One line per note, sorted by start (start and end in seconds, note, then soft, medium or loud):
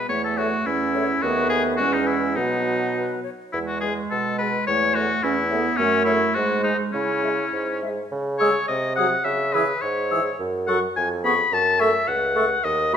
0.08 0.56 E2 medium
0.08 0.67 A3 medium
0.08 0.23 C#5 medium
0.24 0.39 A4 medium
0.37 0.48 A3 medium
0.37 0.67 F#4 medium
0.37 0.50 C#5 medium
0.66 1.13 E2 medium
0.66 1.22 C#4 medium
0.66 1.23 E4 medium
0.94 1.04 A3 medium
0.94 1.07 C#5 medium
1.22 1.81 D#2 medium
1.22 1.80 A3 medium
1.22 1.78 B3 medium
1.22 1.49 F#4 medium
1.22 1.74 B4 medium
1.50 1.62 G#4 medium
1.77 2.39 E2 medium
1.77 2.39 G#3 medium
1.77 2.35 C#4 medium
1.77 1.95 F#4 medium
1.77 2.35 B4 medium
1.93 2.08 D#4 medium
2.07 2.37 E4 medium
2.36 3.25 B2 medium
2.36 3.24 F#3 medium
2.36 3.22 B3 medium
2.36 3.24 D#4 medium
2.36 2.88 B4 soft
2.96 3.23 B4 soft
3.23 3.30 C#5 soft
3.52 4.01 E2 medium
3.52 4.69 G#3 medium
3.52 3.59 E4 medium
3.67 3.80 F#4 medium
3.81 3.93 G#3 soft
3.81 3.94 G#4 medium
3.81 3.88 B4 soft
4.11 4.58 B2 medium
4.11 4.38 A4 medium
4.38 4.49 G#3 soft
4.38 4.66 B4 medium
4.38 4.46 B4 soft
4.67 5.14 E2 medium
4.67 5.23 A3 medium
4.67 4.96 C#5 medium
4.95 5.06 A3 soft
4.95 5.24 F#4 medium
4.95 5.01 C#5 medium
5.23 5.70 E2 medium
5.23 5.36 C#4 medium
5.23 5.78 E4 medium
5.50 5.61 A3 medium
5.50 5.81 B3 medium
5.50 5.56 C#5 medium
5.77 6.26 F#2 medium
5.77 6.36 A3 medium
5.77 6.04 C#4 medium
6.05 6.18 A3 medium
6.05 6.36 E4 medium
6.05 6.12 C#5 medium
6.34 6.84 G#2 medium
6.34 6.92 G#3 medium
6.34 6.63 F#4 medium
6.63 6.74 G#3 medium
6.63 6.77 D#4 medium
6.63 6.69 C5 medium
6.92 7.43 C#3 medium
6.92 7.80 C#4 medium
6.92 7.80 E4 medium
7.23 7.34 G#3 soft
7.23 7.29 E5 soft
7.53 8.02 G#2 medium
7.82 7.93 G#3 soft
7.82 7.88 E5 soft
8.12 8.59 C#3 medium
8.38 8.51 G#3 medium
8.38 8.50 G#4 medium
8.38 8.66 C#5 medium
8.38 8.53 E6 medium
8.68 9.16 C3 medium
8.68 8.95 D#5 medium
8.96 9.08 F#3 medium
8.96 9.07 G#4 medium
8.96 9.26 F#5 medium
8.96 9.10 D#6 medium
9.25 9.72 C#3 medium
9.25 9.55 E5 medium
9.53 9.64 E3 medium
9.53 9.64 G#4 medium
9.53 9.83 B4 medium
9.53 9.68 E6 medium
9.81 10.30 G#2 medium
9.81 10.38 C#5 medium
10.11 10.21 E3 medium
10.11 10.21 G#4 medium
10.11 10.24 E6 medium
10.39 10.86 F#2 medium
10.67 10.77 F#3 medium
10.67 10.77 A4 medium
10.67 10.80 F#5 medium
10.67 10.81 C#6 medium
10.96 11.42 F2 medium
10.96 11.08 G#5 medium
11.24 11.34 B3 medium
11.24 11.34 G#4 medium
11.24 11.55 B5 medium
11.24 11.37 C#6 medium
11.52 11.98 F#2 medium
11.52 11.82 A5 medium
11.79 11.89 A3 medium
11.79 11.90 A4 medium
11.79 12.09 E5 medium
11.79 11.92 C#6 medium
12.07 12.54 C#2 medium
12.07 12.66 F#5 medium
12.36 12.46 A3 medium
12.36 12.46 A4 medium
12.36 12.49 C#6 medium
12.64 12.97 D#2 medium
12.64 12.92 D#5 medium
12.93 12.97 A3 medium
12.93 12.97 F#4 medium
12.93 12.97 B5 medium